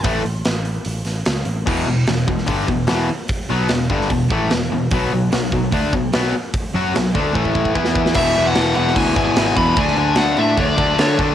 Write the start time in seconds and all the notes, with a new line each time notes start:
0.04 A1 A2 E3 A3, kick, open hi-hat
0.25 A1, open hi-hat
0.45 A1, snare, open hi-hat
0.65 open hi-hat
0.85 A1, open hi-hat
1.05 A1, snare, open hi-hat
1.26 C#2, snare, open hi-hat
1.45 A1, open hi-hat
1.66 E1 E2 B2 E3, kick, crash
1.87 E1 E2 B2
2.07 E1 E2 B2, snare, open hi-hat
2.27 E1 E2 B2, kick
2.38 snare
2.46 G1 G2 D3 G3, kick, open hi-hat
2.68 E1 E2 B2, kick
2.87 E1 E2 B2 E3, snare, open hi-hat
3.28 kick, open hi-hat
3.50 B1 B2 F#3 B3
3.69 E1 E2 B2, snare, open hi-hat
3.90 G1 G2 D3 G3, kick
4.01 snare
4.10 E1 E2 B2, kick, open hi-hat
4.31 A1 A2 E3 A3, kick
4.50 E1 E2 B2, snare, open hi-hat
4.72 E1 E2 B2
4.91 B1 B2 F#3 B3, kick, open hi-hat
5.13 B1 B2 F#3
5.32 B1 B2 F#3, snare, open hi-hat
5.52 B1 B2 F#3, kick
5.72 D2 D3 A3 D4, kick, open hi-hat
5.93 B1 B2 F#3, kick
6.13 B1 B2 F#3 B3, snare, open hi-hat
6.24 snare
6.54 kick, open hi-hat
6.74 F#2 F#3 C#4 F#4
6.94 B1 B2 F#3, snare, open hi-hat
7.14 D2 D3 A3 D4, kick
7.34 A1 A2 E3 A3, kick
7.45 kick
7.55 kick
7.65 kick
7.75 E2 E3 B3 E4, kick
7.85 snare
7.95 kick
8.06 snare
8.14 E1 E2 B2 E3 E5, kick, crash
8.35 E1 E2 B2 E3, crash
8.47 F#5
8.55 E1 E2 B2 E3, snare, crash
8.75 E1 E2 B2 E3 F#5, crash
8.87 snare
8.94 D2 E2 B2 E3 G#5, kick, crash
9.16 G#1 E2 B2 E3, kick, crash
9.26 G#5
9.36 G#1 E2 B2 E3, snare, crash
9.56 E2 B2 E3 B5, kick, crash
9.76 D2 D3 A3 D4 G#5, kick, crash
9.88 snare
9.96 D2 D3 A3 D4, crash
10.15 D2 D3 A3 D4 F#5, snare, crash
10.37 A2 D3 A3 D4 E5, crash
10.57 D2 D3 A3 D4 D5, kick, crash
10.77 D2 D3 A3 D4, kick, crash
10.98 D3 A3 D4 C#5, snare, crash
11.19 D3 A3 D4, kick, crash